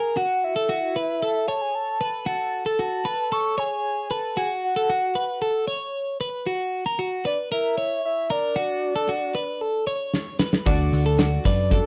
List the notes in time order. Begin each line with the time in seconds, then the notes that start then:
Already playing: A#4 G#5
0.17 F#4 F#5
0.44 E5
0.56 A4
0.69 F#4
0.96 B4
1.22 A4
1.48 C#5 A5
1.61 G#5
1.75 A5
2.01 B4
2.26 F#4 A5
2.66 A4 A5
2.79 F#4
3.05 B4
3.32 A4 C#6
3.58 C#5 G#5
4.11 B4 A5
4.37 F#4 G#5
4.64 F#5
4.76 A4
4.90 F#4
5.15 B4
5.42 A4
5.68 C#5
6.21 B4
6.47 F#4
6.86 A#4
6.99 F#4
7.25 B4 D5
7.52 A#4 E5
7.78 C#5
8.05 E5
8.30 A#4 D5
8.56 F#4
8.96 A4
9.09 F#4
9.35 B4
9.61 A4
9.87 C#5
10.14 snare
10.39 B4, snare
10.53 snare
10.66 D2 D4 F#4 A4 D5, kick, open hi-hat, tambourine
10.92 D2 D4 F#4 A4 D5, hi-hat pedal, open hi-hat, tambourine
11.06 A4
11.18 D4 F#4 A4 D5, snare, hi-hat pedal, open hi-hat, tambourine
11.45 F#2 D4 F#4 A4 B4 D5, kick, hi-hat pedal, open hi-hat, tambourine
11.71 D4 F#4 A4 D5, kick, hi-hat pedal, open hi-hat, tambourine